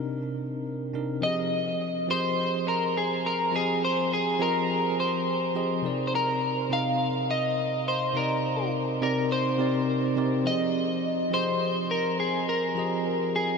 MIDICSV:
0, 0, Header, 1, 3, 480
1, 0, Start_track
1, 0, Tempo, 576923
1, 1024, Time_signature, 4, 2, 24, 8
1, 11297, End_track
2, 0, Start_track
2, 0, Title_t, "Clean electric guitar"
2, 0, Program_c, 0, 27
2, 1026, Note_on_c, 0, 75, 105
2, 1750, Note_off_c, 0, 75, 0
2, 1753, Note_on_c, 0, 72, 114
2, 2229, Note_off_c, 0, 72, 0
2, 2232, Note_on_c, 0, 70, 90
2, 2474, Note_on_c, 0, 68, 84
2, 2475, Note_off_c, 0, 70, 0
2, 2716, Note_off_c, 0, 68, 0
2, 2716, Note_on_c, 0, 70, 89
2, 2957, Note_off_c, 0, 70, 0
2, 2959, Note_on_c, 0, 68, 92
2, 3175, Note_off_c, 0, 68, 0
2, 3199, Note_on_c, 0, 72, 91
2, 3415, Note_off_c, 0, 72, 0
2, 3439, Note_on_c, 0, 68, 91
2, 3676, Note_on_c, 0, 70, 99
2, 3678, Note_off_c, 0, 68, 0
2, 4156, Note_off_c, 0, 70, 0
2, 4160, Note_on_c, 0, 72, 87
2, 4599, Note_off_c, 0, 72, 0
2, 5053, Note_on_c, 0, 72, 66
2, 5107, Note_off_c, 0, 72, 0
2, 5119, Note_on_c, 0, 70, 93
2, 5595, Note_off_c, 0, 70, 0
2, 5598, Note_on_c, 0, 77, 118
2, 6038, Note_off_c, 0, 77, 0
2, 6078, Note_on_c, 0, 75, 105
2, 6554, Note_off_c, 0, 75, 0
2, 6557, Note_on_c, 0, 72, 95
2, 6794, Note_on_c, 0, 70, 82
2, 6798, Note_off_c, 0, 72, 0
2, 7236, Note_off_c, 0, 70, 0
2, 7514, Note_on_c, 0, 70, 99
2, 7732, Note_off_c, 0, 70, 0
2, 7756, Note_on_c, 0, 72, 106
2, 8436, Note_off_c, 0, 72, 0
2, 8710, Note_on_c, 0, 75, 107
2, 9430, Note_off_c, 0, 75, 0
2, 9433, Note_on_c, 0, 72, 108
2, 9875, Note_off_c, 0, 72, 0
2, 9909, Note_on_c, 0, 70, 94
2, 10130, Note_off_c, 0, 70, 0
2, 10149, Note_on_c, 0, 68, 81
2, 10370, Note_off_c, 0, 68, 0
2, 10392, Note_on_c, 0, 70, 96
2, 11110, Note_off_c, 0, 70, 0
2, 11113, Note_on_c, 0, 68, 90
2, 11297, Note_off_c, 0, 68, 0
2, 11297, End_track
3, 0, Start_track
3, 0, Title_t, "Tine electric piano"
3, 0, Program_c, 1, 4
3, 0, Control_c, 1, 64, 127
3, 0, Note_on_c, 1, 48, 81
3, 0, Note_on_c, 1, 60, 76
3, 0, Note_on_c, 1, 62, 76
3, 0, Note_on_c, 1, 63, 72
3, 0, Note_on_c, 1, 70, 90
3, 775, Note_off_c, 1, 48, 0
3, 775, Note_on_c, 1, 48, 73
3, 779, Note_off_c, 1, 60, 0
3, 779, Note_on_c, 1, 60, 66
3, 783, Note_off_c, 1, 62, 0
3, 783, Note_on_c, 1, 62, 67
3, 789, Note_off_c, 1, 63, 0
3, 789, Note_on_c, 1, 63, 68
3, 791, Note_off_c, 1, 70, 0
3, 791, Note_on_c, 1, 70, 79
3, 992, Note_off_c, 1, 48, 0
3, 994, Note_off_c, 1, 60, 0
3, 995, Note_off_c, 1, 62, 0
3, 999, Note_off_c, 1, 63, 0
3, 1000, Note_off_c, 1, 70, 0
3, 1006, Note_on_c, 1, 53, 74
3, 1012, Note_on_c, 1, 60, 70
3, 1021, Note_on_c, 1, 67, 70
3, 1032, Note_on_c, 1, 68, 70
3, 1034, Control_c, 1, 64, 0
3, 1040, Note_on_c, 1, 75, 86
3, 1159, Control_c, 1, 64, 127
3, 1707, Note_off_c, 1, 53, 0
3, 1710, Note_off_c, 1, 60, 0
3, 1715, Note_off_c, 1, 67, 0
3, 1720, Note_off_c, 1, 68, 0
3, 1724, Note_off_c, 1, 75, 0
3, 1727, Note_on_c, 1, 53, 76
3, 1736, Note_on_c, 1, 60, 68
3, 1746, Note_on_c, 1, 67, 68
3, 1754, Note_on_c, 1, 68, 68
3, 1763, Note_on_c, 1, 75, 86
3, 2908, Note_off_c, 1, 53, 0
3, 2912, Note_off_c, 1, 60, 0
3, 2917, Note_off_c, 1, 67, 0
3, 2921, Note_off_c, 1, 68, 0
3, 2924, Note_on_c, 1, 53, 75
3, 2926, Note_off_c, 1, 75, 0
3, 2933, Note_on_c, 1, 60, 75
3, 2942, Note_on_c, 1, 67, 75
3, 2952, Note_on_c, 1, 68, 75
3, 2959, Note_on_c, 1, 75, 84
3, 3626, Note_off_c, 1, 53, 0
3, 3631, Note_off_c, 1, 60, 0
3, 3635, Note_off_c, 1, 67, 0
3, 3640, Note_off_c, 1, 68, 0
3, 3644, Note_off_c, 1, 75, 0
3, 3650, Note_on_c, 1, 53, 94
3, 3655, Note_on_c, 1, 60, 85
3, 3659, Note_on_c, 1, 67, 81
3, 3664, Note_on_c, 1, 68, 80
3, 3668, Note_on_c, 1, 75, 99
3, 3819, Note_off_c, 1, 53, 0
3, 3821, Note_off_c, 1, 60, 0
3, 3823, Note_off_c, 1, 67, 0
3, 3825, Note_off_c, 1, 68, 0
3, 3828, Note_off_c, 1, 75, 0
3, 4614, Note_on_c, 1, 53, 77
3, 4619, Note_on_c, 1, 60, 76
3, 4623, Note_on_c, 1, 67, 73
3, 4627, Note_on_c, 1, 68, 74
3, 4630, Note_on_c, 1, 75, 95
3, 4831, Note_off_c, 1, 53, 0
3, 4834, Note_off_c, 1, 60, 0
3, 4836, Note_off_c, 1, 67, 0
3, 4838, Note_off_c, 1, 68, 0
3, 4839, Note_off_c, 1, 75, 0
3, 4843, Note_on_c, 1, 48, 78
3, 4851, Note_on_c, 1, 60, 71
3, 4860, Note_on_c, 1, 63, 67
3, 4868, Note_on_c, 1, 70, 66
3, 4875, Control_c, 1, 64, 0
3, 4878, Note_on_c, 1, 74, 87
3, 5021, Control_c, 1, 64, 127
3, 5546, Note_off_c, 1, 48, 0
3, 5550, Note_off_c, 1, 60, 0
3, 5554, Note_off_c, 1, 63, 0
3, 5558, Note_off_c, 1, 70, 0
3, 5563, Note_off_c, 1, 74, 0
3, 5566, Note_on_c, 1, 48, 74
3, 5575, Note_on_c, 1, 60, 70
3, 5586, Note_on_c, 1, 63, 72
3, 5594, Note_on_c, 1, 70, 72
3, 5602, Note_on_c, 1, 75, 82
3, 6747, Note_off_c, 1, 48, 0
3, 6752, Note_off_c, 1, 60, 0
3, 6757, Note_off_c, 1, 63, 0
3, 6761, Note_off_c, 1, 70, 0
3, 6765, Note_off_c, 1, 75, 0
3, 6769, Note_on_c, 1, 48, 82
3, 6777, Note_on_c, 1, 60, 74
3, 6786, Note_on_c, 1, 63, 71
3, 6796, Note_on_c, 1, 70, 68
3, 6805, Note_on_c, 1, 74, 90
3, 7469, Note_off_c, 1, 48, 0
3, 7473, Note_off_c, 1, 60, 0
3, 7477, Note_off_c, 1, 63, 0
3, 7482, Note_off_c, 1, 70, 0
3, 7486, Note_off_c, 1, 74, 0
3, 7497, Note_on_c, 1, 48, 90
3, 7502, Note_on_c, 1, 60, 86
3, 7506, Note_on_c, 1, 63, 89
3, 7511, Note_on_c, 1, 70, 83
3, 7515, Note_on_c, 1, 74, 99
3, 7662, Note_off_c, 1, 48, 0
3, 7665, Note_off_c, 1, 60, 0
3, 7666, Note_off_c, 1, 63, 0
3, 7669, Note_off_c, 1, 70, 0
3, 7671, Note_off_c, 1, 74, 0
3, 7975, Note_on_c, 1, 48, 104
3, 7980, Note_on_c, 1, 60, 89
3, 7984, Note_on_c, 1, 63, 92
3, 7988, Note_on_c, 1, 70, 87
3, 7993, Note_on_c, 1, 74, 108
3, 8431, Note_off_c, 1, 48, 0
3, 8434, Note_off_c, 1, 60, 0
3, 8436, Note_off_c, 1, 63, 0
3, 8438, Note_off_c, 1, 70, 0
3, 8441, Note_off_c, 1, 74, 0
3, 8453, Note_on_c, 1, 48, 96
3, 8459, Note_on_c, 1, 60, 84
3, 8462, Note_on_c, 1, 63, 80
3, 8467, Note_on_c, 1, 70, 80
3, 8473, Note_on_c, 1, 74, 103
3, 8671, Note_off_c, 1, 48, 0
3, 8674, Note_off_c, 1, 60, 0
3, 8675, Note_off_c, 1, 63, 0
3, 8678, Note_off_c, 1, 70, 0
3, 8681, Note_off_c, 1, 74, 0
3, 8688, Note_on_c, 1, 53, 72
3, 8696, Note_on_c, 1, 60, 68
3, 8705, Note_on_c, 1, 67, 66
3, 8714, Control_c, 1, 64, 0
3, 8714, Note_on_c, 1, 68, 69
3, 8723, Note_on_c, 1, 75, 84
3, 8845, Control_c, 1, 64, 127
3, 9388, Note_off_c, 1, 53, 0
3, 9392, Note_off_c, 1, 60, 0
3, 9397, Note_off_c, 1, 67, 0
3, 9401, Note_off_c, 1, 68, 0
3, 9405, Note_on_c, 1, 53, 80
3, 9406, Note_off_c, 1, 75, 0
3, 9416, Note_on_c, 1, 60, 68
3, 9425, Note_on_c, 1, 67, 69
3, 9433, Note_on_c, 1, 68, 72
3, 9442, Note_on_c, 1, 75, 84
3, 10587, Note_off_c, 1, 53, 0
3, 10592, Note_off_c, 1, 60, 0
3, 10597, Note_off_c, 1, 67, 0
3, 10601, Note_off_c, 1, 68, 0
3, 10605, Note_off_c, 1, 75, 0
3, 10606, Note_on_c, 1, 53, 77
3, 10617, Note_on_c, 1, 60, 75
3, 10624, Note_on_c, 1, 67, 77
3, 10633, Note_on_c, 1, 68, 74
3, 10641, Note_on_c, 1, 75, 89
3, 11297, Note_off_c, 1, 53, 0
3, 11297, Note_off_c, 1, 60, 0
3, 11297, Note_off_c, 1, 67, 0
3, 11297, Note_off_c, 1, 68, 0
3, 11297, Note_off_c, 1, 75, 0
3, 11297, End_track
0, 0, End_of_file